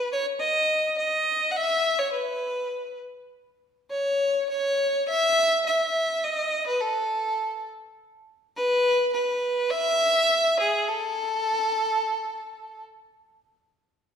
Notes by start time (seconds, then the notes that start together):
Already playing: B4
0.13 C#5
0.40 D#5
0.98 D#5
1.51 F#5
1.57 E5
1.99 C#5
2.13 B4
3.91 C#5
4.50 C#5
5.09 E5
5.66 E5
6.24 D#5
6.67 B4
6.81 A4
8.56 B4
9.13 B4
9.70 E5
10.60 G#4
10.88 A4